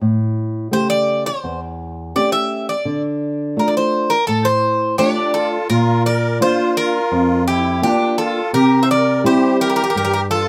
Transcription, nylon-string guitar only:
0.01 A2
0.71 C#3 A3 G4
1.44 E2
2.15 A3 C#4 G4
2.85 D3
3.56 A3 D4 F4
4.28 A2
4.99 A3 D4 F4
5.70 A#2
6.41 A#3 D4 F4
7.12 F2
7.82 A#3 D4 F4
8.53 C3
9.24 G3 C4 E4
9.95 G2

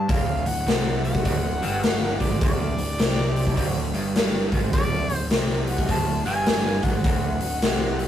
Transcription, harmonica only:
Already playing: A5
0.10 F5
0.48 F#5
1.05 F#5
2.22 D5
2.43 D5
4.73 D5
5.15 C5
5.69 F#5
5.91 A5
6.26 G#5
6.83 F#5

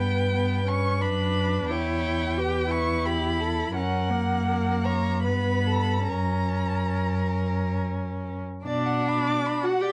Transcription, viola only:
Already playing: B3
0.35 B3
0.68 C#4
1.01 D4
1.70 E4
2.38 G4
2.71 E4
3.75 C#4
4.11 A#3
5.25 B3
6.08 C#4
8.66 D4
9.64 F#4
9.81 G4

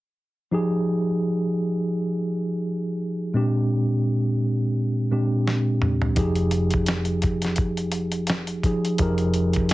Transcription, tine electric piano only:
0.51 F3 D#4 G4 G#4
3.34 A#2 G#3 C4 D4 G4
5.11 A#2 G#3 C4 D4 G4
6.16 F3 D#4 G4 G#4
8.64 F3 D#4 G4 G#4
8.98 F3 D#4 G4 G#4 A#4

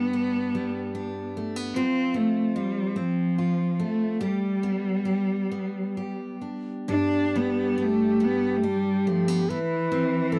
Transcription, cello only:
Already playing: B3
1.75 C4
2.16 A3
2.57 G3
2.97 F3
3.82 A3
4.24 G3
6.91 D4
7.36 B3
7.83 A3
8.24 B3
8.56 A3
8.64 G3
9.08 F3
9.49 E3

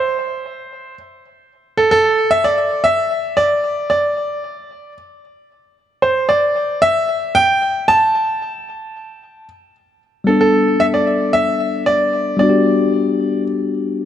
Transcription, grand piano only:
Already playing: C5
1.77 A4
1.91 A4
2.31 E5
2.44 D5
2.84 E5
3.37 D5
3.90 D5
6.02 C5
6.29 D5
6.82 E5
7.35 G5
7.88 A5
10.27 A4
10.41 A4
10.80 E5
10.94 D5
11.33 E5
11.86 D5
12.39 D5

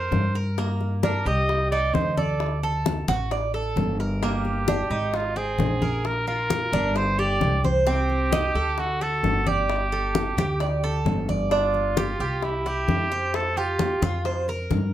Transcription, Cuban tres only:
Already playing: A#4
0.35 A#4
0.58 A#3
1.03 D4
1.26 G4
1.72 D#4
2.17 D5
2.63 A4
3.09 F#4
3.31 D5
3.54 A4
4.00 A#4
4.23 A#3
4.68 D4
4.91 D#4
5.36 C4
5.82 A#4
6.27 F4
6.73 D4
6.95 A#4
7.19 G4
7.64 C5
7.87 C4
8.32 D#4
8.55 A4
9.01 F#4
9.47 D5
9.92 A4
10.38 G4
10.61 D5
10.84 A4
11.29 D5
11.52 D4
11.97 G4
12.20 G4
12.66 E4
13.12 C5
13.57 G4
14.03 F4
14.25 C5
14.49 A#4

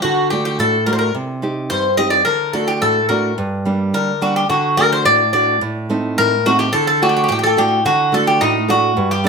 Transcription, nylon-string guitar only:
0.04 D3
0.32 A3 D4 F#4
0.59 A2
0.87 A3 D4 F#4
1.15 C3
1.42 C4 D#4 G4
1.70 G2
1.98 C4 D#4 G4
2.26 D3
2.53 A3 D4 F#4
2.82 A2
3.09 A3 D4 F#4
3.38 G2
3.65 G3 A#3 D4
3.94 D3
4.21 G3 A#3 D4
4.50 D3
4.77 A3 D4 F#4
5.05 A2
5.33 A3 D4 F#4
5.61 A2
5.90 A3 C4 D#4
6.18 A2
6.46 A3 C4 D#4
6.74 D3
7.02 A3 D4 F#4
7.30 A2
7.57 A3 D4 F#4
7.85 D3
8.12 A3 D4 F#4
8.41 A2
8.68 A3 D4 F#4
8.97 G2
9.24 G3 A#3 D4

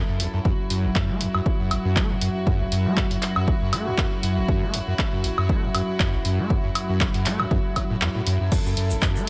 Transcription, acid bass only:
0.08 F#2
0.20 E2
0.34 F#2
0.45 F#2
0.70 F#2
0.84 F#1
0.95 F#2
1.09 A3
1.21 E2
1.35 F#2
1.60 F#2
1.71 F#1
1.85 F#2
1.96 A3
2.10 E2
2.22 F#2
2.47 F#2
2.61 F#1
2.72 F#2
2.86 A3
2.97 E2
3.11 F#2
3.36 F#2
3.48 F#1
3.61 F#2
3.73 A3
3.87 E2
3.98 F#2
4.23 F#2
4.37 F#1
4.48 F#2
4.62 A3
4.74 E2
4.87 F#2
5.13 F#2
5.24 F#1
5.38 F#2
5.49 A3
5.63 E2
5.74 F#2
6.00 F#2
6.14 F#1
6.25 F#2
6.39 A3
6.50 E2
6.64 F#2
6.89 F#2
7.00 F#1
7.14 F#2
7.26 A3
7.40 E2
7.51 F#2
7.76 F#3
7.90 A2
8.01 E2
8.15 A2
8.27 F#2
8.40 F#2
8.52 F#2
8.66 F#2
8.77 F#2
8.91 F#1
9.02 F#2
9.16 A3

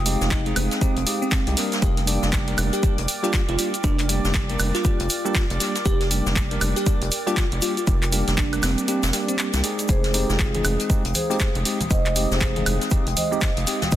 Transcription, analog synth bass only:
Already playing: F1
0.21 F1
0.56 F1
0.97 F1
1.47 C2
1.82 F1
2.23 F1
2.58 F1
2.98 F1
3.49 F1
3.84 F1
4.24 F1
4.59 F1
5.00 F1
5.50 F1
5.86 F1
6.26 F1
6.61 F1
7.02 F1
7.52 F1
7.87 F1
8.28 F1
8.63 F1
9.03 F1
9.54 C2
9.89 F1
10.29 F1
10.65 F1
11.05 F1
11.55 F1
11.91 F1
12.31 F1
12.66 F1
13.07 F1
13.57 F1
13.92 F1

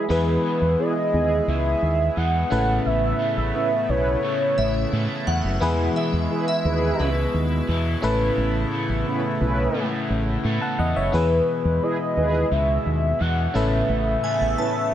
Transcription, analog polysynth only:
0.79 B3 E4 G#4
1.13 B3 E4 G#4
3.55 C#4 E4 B4
3.89 C#4 E4 B4
6.31 E4 G#4 B4
6.65 E4 G#4 B4
9.07 C#4 E4 B4
9.41 C#4 E4 B4
11.83 E4 G#4 B4
12.17 E4 G#4 B4
14.58 C#4 E4 B4

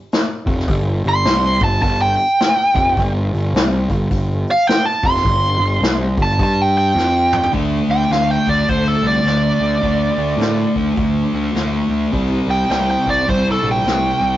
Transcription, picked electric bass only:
0.46 F1
0.68 G1
1.04 G1
1.25 C2
1.61 G1
1.83 G1
2.75 F1
2.97 G1
3.33 G1
3.54 C2
3.90 G1
4.11 G1
5.03 F1
5.25 G1
5.58 G1
5.81 C2
6.18 G1
6.38 G2
6.95 F2
7.54 D2
7.89 D2
8.10 D2
8.47 D2
8.69 D2
9.02 C2
9.24 D2
9.60 D2
9.83 D2
10.18 D2
10.37 A2
10.76 D2
10.97 D2
11.34 D2
11.55 D2
11.89 D2
12.13 C2
12.47 C2
12.69 C2
13.06 C2
13.29 C2
13.63 A#1
13.85 C2
14.21 C2

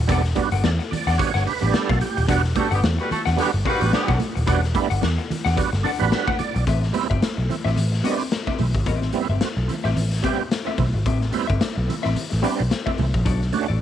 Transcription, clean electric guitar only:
0.10 D4 G4 B4 F#5
0.25 muted clean electric guitar stroke
0.37 muted clean electric guitar stroke
0.52 D4 G4 B4 F#5
0.66 muted clean electric guitar stroke
0.79 muted clean electric guitar stroke
1.07 D4 G4 B4 F#5
1.19 muted clean electric guitar stroke
1.34 D4 G4 B4 F#5
1.46 muted clean electric guitar stroke
1.62 muted clean electric guitar stroke
1.74 muted clean electric guitar stroke
1.89 D4 G4 B4 F#5
2.01 muted clean electric guitar stroke
2.17 muted clean electric guitar stroke
2.28 D4 G4 B4 F#5
2.44 muted clean electric guitar stroke
2.56 muted clean electric guitar stroke
2.71 D4 G4 B4 F#5
2.83 muted clean electric guitar stroke
2.99 muted clean electric guitar stroke
3.25 D4 G4 B4 F#5
3.54 muted clean electric guitar stroke
3.65 D4 G4 B4 F#5
3.81 muted clean electric guitar stroke
3.93 muted clean electric guitar stroke
4.08 D4 G4 B4 F#5
4.20 muted clean electric guitar stroke
4.35 muted clean electric guitar stroke
4.47 D4 G4 B4 F#5
4.63 muted clean electric guitar stroke
4.74 muted clean electric guitar stroke
4.90 D4 G4 B4 F#5
5.02 muted clean electric guitar stroke
5.18 muted clean electric guitar stroke
5.45 D4 G4 B4 F#5
5.73 muted clean electric guitar stroke
5.84 D4 G4 B4 F#5
6.00 muted clean electric guitar stroke
6.11 muted clean electric guitar stroke
6.28 D4 G4 B4 F#5
6.40 muted clean electric guitar stroke
6.55 muted clean electric guitar stroke
6.67 C4 G4 B4 E5
6.82 muted clean electric guitar stroke
6.94 muted clean electric guitar stroke
7.10 C4 G4 B4 E5
7.22 muted clean electric guitar stroke
7.37 muted clean electric guitar stroke
7.65 C4 G4 B4 E5
7.92 muted clean electric guitar stroke
8.04 C4 G4 B4 E5
8.20 muted clean electric guitar stroke
8.32 muted clean electric guitar stroke
8.47 C4 G4 B4 E5
8.60 muted clean electric guitar stroke
8.75 muted clean electric guitar stroke
8.87 C4 G4 B4 E5
9.02 muted clean electric guitar stroke
9.14 muted clean electric guitar stroke
9.30 C4 G4 B4 E5
9.42 muted clean electric guitar stroke
9.57 muted clean electric guitar stroke
9.84 C4 G4 B4 E5
10.12 muted clean electric guitar stroke
10.24 C4 G4 B4 E5
10.40 muted clean electric guitar stroke
10.52 muted clean electric guitar stroke
10.67 C4 G4 B4 E5
10.79 muted clean electric guitar stroke
10.94 muted clean electric guitar stroke
11.06 C4 G4 B4 E5
11.21 muted clean electric guitar stroke
11.32 muted clean electric guitar stroke
11.47 C4 G4 B4 E5
11.60 muted clean electric guitar stroke
11.76 muted clean electric guitar stroke
12.03 C4 G4 B4 E5
12.30 muted clean electric guitar stroke
12.43 C4 G4 B4 E5
12.58 muted clean electric guitar stroke
12.70 muted clean electric guitar stroke
12.86 C4 G4 B4 E5
12.99 muted clean electric guitar stroke
13.14 muted clean electric guitar stroke
13.25 D4 F#4 A4 D5
13.41 muted clean electric guitar stroke
13.53 muted clean electric guitar stroke
13.68 D4 F#4 A4 D5

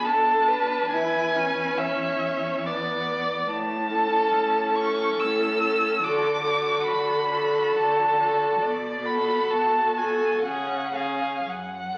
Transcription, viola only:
0.06 D4
0.93 E4
1.36 C#4
2.65 B3
3.93 C#4
4.78 C#4
5.63 C#4
6.04 F#4
6.46 F#4
7.32 F#4
8.20 F#4
9.04 F#4
9.96 F#4
10.43 C#4
10.93 C#4

